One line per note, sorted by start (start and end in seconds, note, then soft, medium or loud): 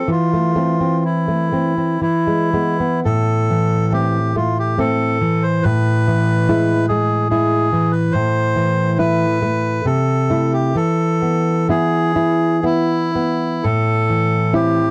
0.08 1.97 E3 soft
0.08 1.04 F4 medium
0.34 0.54 A3 soft
0.56 0.78 A3 soft
0.56 0.78 C4 soft
0.80 1.51 C4 soft
1.05 2.00 E4 soft
1.28 1.51 A3 soft
1.52 1.74 A3 soft
1.52 1.75 C4 soft
1.78 2.02 C4 soft
2.02 3.01 E3 soft
2.02 3.00 E4 medium
2.27 2.52 G#3 soft
2.54 2.77 G#3 soft
2.54 2.77 B3 soft
2.80 3.04 B3 soft
3.05 5.61 A2 soft
3.05 3.93 A4 medium
3.50 4.19 E3 soft
3.92 4.31 A3 soft
3.92 4.32 C4 soft
3.92 4.36 G4 medium
4.36 4.77 A3 soft
4.36 4.57 F4 medium
4.59 4.80 G4 medium
4.78 5.18 A3 soft
4.78 5.18 C4 soft
4.78 5.43 A4 medium
5.21 5.65 E3 soft
5.43 5.64 C5 medium
5.63 8.11 A2 medium
5.63 6.86 B4 medium
6.08 6.73 E3 soft
6.49 6.86 G#3 soft
6.49 6.85 E4 soft
6.88 7.30 G#3 soft
6.88 7.28 G#4 medium
7.30 7.69 G#3 soft
7.30 7.69 E4 soft
7.30 7.92 G#4 medium
7.73 8.15 E3 soft
7.91 8.13 B4 medium
8.12 9.82 A2 medium
8.12 8.98 C5 medium
8.56 9.25 E3 soft
8.99 9.38 A3 soft
8.99 9.38 E4 soft
8.99 9.86 B4 medium
9.42 9.86 A3 soft
9.85 10.73 C3 soft
9.85 10.53 A4 medium
10.30 10.72 A3 soft
10.30 10.72 E4 soft
10.53 10.76 G4 medium
10.75 13.61 E3 soft
10.75 11.68 A4 medium
11.22 11.68 B3 soft
11.69 12.12 B3 soft
11.69 12.13 E4 soft
11.69 12.65 G#4 medium
12.16 12.62 E4 soft
12.63 13.11 B3 soft
12.63 13.11 E4 soft
12.63 13.65 E4 medium
13.15 13.65 B3 soft
13.63 14.91 A2 soft
13.63 14.54 A4 medium
14.10 14.80 E3 soft
14.53 14.91 C4 soft
14.53 14.91 E4 soft
14.53 14.91 G4 medium